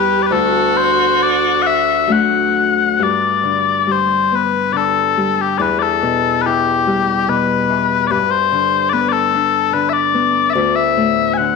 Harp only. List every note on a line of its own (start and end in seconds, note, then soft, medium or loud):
0.00 0.37 E2 medium
0.00 0.37 G3 soft
0.00 0.32 A3 soft
0.00 2.58 B3 soft
0.00 2.09 E4 soft
0.31 3.05 D2 medium
2.07 3.05 F#3 soft
2.07 5.41 A3 soft
2.07 4.89 D4 soft
2.99 5.65 G2 medium
3.43 4.72 D3 soft
3.87 4.80 G3 soft
4.32 7.42 B3 soft
4.73 5.65 D3 soft
5.17 5.65 G3 soft
5.60 8.15 E2 medium
6.03 7.27 B2 soft
6.46 7.33 E3 soft
6.87 8.15 G3 soft
7.29 8.15 B2 soft
7.69 8.15 E3 soft
8.10 10.60 G2 medium
8.52 9.72 D3 soft
8.93 10.14 B3 soft
9.34 11.56 D4 soft
9.73 10.60 D3 soft
10.14 11.56 B3 soft
10.55 11.56 D2 medium
10.97 11.44 A2 soft
11.38 11.56 D3 soft